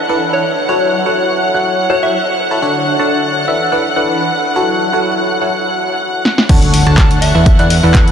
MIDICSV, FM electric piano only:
0, 0, Header, 1, 2, 480
1, 0, Start_track
1, 0, Key_signature, 3, "minor"
1, 0, Tempo, 483871
1, 682, Time_signature, 4, 2, 24, 8
1, 8052, End_track
2, 0, Start_track
2, 0, Title_t, "FM electric piano"
2, 0, Program_c, 0, 5
2, 91, Note_on_c, 0, 52, 89
2, 91, Note_on_c, 0, 62, 82
2, 91, Note_on_c, 0, 71, 80
2, 92, Note_on_c, 0, 69, 83
2, 92, Note_on_c, 0, 78, 93
2, 429, Note_off_c, 0, 52, 0
2, 429, Note_off_c, 0, 62, 0
2, 429, Note_off_c, 0, 69, 0
2, 429, Note_off_c, 0, 71, 0
2, 429, Note_off_c, 0, 78, 0
2, 683, Note_on_c, 0, 54, 90
2, 683, Note_on_c, 0, 64, 80
2, 683, Note_on_c, 0, 69, 79
2, 683, Note_on_c, 0, 73, 76
2, 683, Note_on_c, 0, 78, 98
2, 1020, Note_off_c, 0, 54, 0
2, 1020, Note_off_c, 0, 64, 0
2, 1020, Note_off_c, 0, 69, 0
2, 1020, Note_off_c, 0, 73, 0
2, 1020, Note_off_c, 0, 78, 0
2, 1051, Note_on_c, 0, 64, 76
2, 1051, Note_on_c, 0, 73, 74
2, 1051, Note_on_c, 0, 78, 88
2, 1052, Note_on_c, 0, 54, 80
2, 1052, Note_on_c, 0, 69, 73
2, 1500, Note_off_c, 0, 54, 0
2, 1500, Note_off_c, 0, 64, 0
2, 1500, Note_off_c, 0, 69, 0
2, 1500, Note_off_c, 0, 73, 0
2, 1500, Note_off_c, 0, 78, 0
2, 1530, Note_on_c, 0, 54, 71
2, 1530, Note_on_c, 0, 69, 65
2, 1530, Note_on_c, 0, 78, 83
2, 1531, Note_on_c, 0, 64, 61
2, 1531, Note_on_c, 0, 73, 64
2, 1855, Note_off_c, 0, 54, 0
2, 1855, Note_off_c, 0, 64, 0
2, 1855, Note_off_c, 0, 69, 0
2, 1855, Note_off_c, 0, 73, 0
2, 1855, Note_off_c, 0, 78, 0
2, 1882, Note_on_c, 0, 54, 95
2, 1882, Note_on_c, 0, 64, 79
2, 1882, Note_on_c, 0, 69, 84
2, 1882, Note_on_c, 0, 73, 83
2, 1882, Note_on_c, 0, 78, 95
2, 1979, Note_off_c, 0, 64, 0
2, 1979, Note_off_c, 0, 69, 0
2, 1979, Note_off_c, 0, 78, 0
2, 1980, Note_off_c, 0, 54, 0
2, 1980, Note_off_c, 0, 73, 0
2, 2010, Note_on_c, 0, 64, 70
2, 2011, Note_on_c, 0, 54, 81
2, 2011, Note_on_c, 0, 69, 74
2, 2011, Note_on_c, 0, 73, 71
2, 2011, Note_on_c, 0, 78, 88
2, 2137, Note_off_c, 0, 54, 0
2, 2137, Note_off_c, 0, 64, 0
2, 2137, Note_off_c, 0, 69, 0
2, 2137, Note_off_c, 0, 73, 0
2, 2137, Note_off_c, 0, 78, 0
2, 2490, Note_on_c, 0, 64, 85
2, 2490, Note_on_c, 0, 69, 75
2, 2490, Note_on_c, 0, 73, 81
2, 2490, Note_on_c, 0, 81, 93
2, 2575, Note_off_c, 0, 64, 0
2, 2575, Note_off_c, 0, 69, 0
2, 2575, Note_off_c, 0, 73, 0
2, 2575, Note_off_c, 0, 81, 0
2, 2601, Note_on_c, 0, 50, 87
2, 2601, Note_on_c, 0, 62, 79
2, 2601, Note_on_c, 0, 69, 78
2, 2601, Note_on_c, 0, 73, 80
2, 2601, Note_on_c, 0, 78, 91
2, 2939, Note_off_c, 0, 50, 0
2, 2939, Note_off_c, 0, 62, 0
2, 2939, Note_off_c, 0, 69, 0
2, 2939, Note_off_c, 0, 73, 0
2, 2939, Note_off_c, 0, 78, 0
2, 2969, Note_on_c, 0, 62, 76
2, 2969, Note_on_c, 0, 69, 77
2, 2969, Note_on_c, 0, 73, 77
2, 2970, Note_on_c, 0, 50, 86
2, 2970, Note_on_c, 0, 81, 90
2, 3419, Note_off_c, 0, 50, 0
2, 3419, Note_off_c, 0, 62, 0
2, 3419, Note_off_c, 0, 69, 0
2, 3419, Note_off_c, 0, 73, 0
2, 3419, Note_off_c, 0, 81, 0
2, 3449, Note_on_c, 0, 52, 79
2, 3449, Note_on_c, 0, 62, 71
2, 3450, Note_on_c, 0, 69, 68
2, 3450, Note_on_c, 0, 71, 72
2, 3450, Note_on_c, 0, 76, 86
2, 3659, Note_off_c, 0, 52, 0
2, 3659, Note_off_c, 0, 62, 0
2, 3659, Note_off_c, 0, 69, 0
2, 3659, Note_off_c, 0, 71, 0
2, 3659, Note_off_c, 0, 76, 0
2, 3690, Note_on_c, 0, 52, 94
2, 3690, Note_on_c, 0, 62, 85
2, 3690, Note_on_c, 0, 71, 84
2, 3690, Note_on_c, 0, 78, 103
2, 3691, Note_on_c, 0, 69, 83
2, 3817, Note_off_c, 0, 52, 0
2, 3817, Note_off_c, 0, 62, 0
2, 3817, Note_off_c, 0, 69, 0
2, 3817, Note_off_c, 0, 71, 0
2, 3817, Note_off_c, 0, 78, 0
2, 3930, Note_on_c, 0, 62, 80
2, 3930, Note_on_c, 0, 78, 95
2, 3931, Note_on_c, 0, 52, 90
2, 3931, Note_on_c, 0, 69, 80
2, 3931, Note_on_c, 0, 71, 83
2, 4268, Note_off_c, 0, 62, 0
2, 4268, Note_off_c, 0, 78, 0
2, 4269, Note_off_c, 0, 52, 0
2, 4269, Note_off_c, 0, 69, 0
2, 4269, Note_off_c, 0, 71, 0
2, 4522, Note_on_c, 0, 54, 89
2, 4522, Note_on_c, 0, 69, 80
2, 4522, Note_on_c, 0, 73, 75
2, 4522, Note_on_c, 0, 78, 100
2, 4523, Note_on_c, 0, 64, 84
2, 4859, Note_off_c, 0, 73, 0
2, 4859, Note_off_c, 0, 78, 0
2, 4860, Note_off_c, 0, 54, 0
2, 4860, Note_off_c, 0, 64, 0
2, 4860, Note_off_c, 0, 69, 0
2, 4891, Note_on_c, 0, 54, 85
2, 4891, Note_on_c, 0, 64, 76
2, 4891, Note_on_c, 0, 69, 78
2, 4891, Note_on_c, 0, 73, 76
2, 4891, Note_on_c, 0, 78, 88
2, 5340, Note_off_c, 0, 54, 0
2, 5340, Note_off_c, 0, 64, 0
2, 5340, Note_off_c, 0, 69, 0
2, 5340, Note_off_c, 0, 73, 0
2, 5340, Note_off_c, 0, 78, 0
2, 5370, Note_on_c, 0, 69, 66
2, 5371, Note_on_c, 0, 54, 72
2, 5371, Note_on_c, 0, 64, 68
2, 5371, Note_on_c, 0, 73, 64
2, 5371, Note_on_c, 0, 78, 80
2, 5482, Note_off_c, 0, 54, 0
2, 5482, Note_off_c, 0, 64, 0
2, 5482, Note_off_c, 0, 69, 0
2, 5482, Note_off_c, 0, 73, 0
2, 5482, Note_off_c, 0, 78, 0
2, 6442, Note_on_c, 0, 50, 90
2, 6442, Note_on_c, 0, 62, 82
2, 6442, Note_on_c, 0, 69, 78
2, 6442, Note_on_c, 0, 73, 86
2, 6442, Note_on_c, 0, 78, 96
2, 6779, Note_off_c, 0, 50, 0
2, 6779, Note_off_c, 0, 62, 0
2, 6779, Note_off_c, 0, 69, 0
2, 6779, Note_off_c, 0, 73, 0
2, 6779, Note_off_c, 0, 78, 0
2, 6810, Note_on_c, 0, 50, 90
2, 6810, Note_on_c, 0, 62, 80
2, 6810, Note_on_c, 0, 69, 77
2, 6810, Note_on_c, 0, 73, 86
2, 6810, Note_on_c, 0, 81, 95
2, 7259, Note_off_c, 0, 50, 0
2, 7259, Note_off_c, 0, 62, 0
2, 7259, Note_off_c, 0, 69, 0
2, 7259, Note_off_c, 0, 73, 0
2, 7259, Note_off_c, 0, 81, 0
2, 7290, Note_on_c, 0, 52, 83
2, 7290, Note_on_c, 0, 62, 81
2, 7290, Note_on_c, 0, 69, 78
2, 7290, Note_on_c, 0, 71, 78
2, 7290, Note_on_c, 0, 76, 93
2, 7499, Note_off_c, 0, 52, 0
2, 7499, Note_off_c, 0, 62, 0
2, 7499, Note_off_c, 0, 69, 0
2, 7499, Note_off_c, 0, 71, 0
2, 7499, Note_off_c, 0, 76, 0
2, 7530, Note_on_c, 0, 52, 97
2, 7530, Note_on_c, 0, 71, 94
2, 7530, Note_on_c, 0, 78, 108
2, 7531, Note_on_c, 0, 62, 94
2, 7531, Note_on_c, 0, 69, 90
2, 7657, Note_off_c, 0, 52, 0
2, 7657, Note_off_c, 0, 62, 0
2, 7657, Note_off_c, 0, 69, 0
2, 7657, Note_off_c, 0, 71, 0
2, 7657, Note_off_c, 0, 78, 0
2, 7771, Note_on_c, 0, 52, 94
2, 7771, Note_on_c, 0, 62, 87
2, 7771, Note_on_c, 0, 69, 92
2, 7771, Note_on_c, 0, 71, 92
2, 7771, Note_on_c, 0, 78, 105
2, 8052, Note_off_c, 0, 52, 0
2, 8052, Note_off_c, 0, 62, 0
2, 8052, Note_off_c, 0, 69, 0
2, 8052, Note_off_c, 0, 71, 0
2, 8052, Note_off_c, 0, 78, 0
2, 8052, End_track
0, 0, End_of_file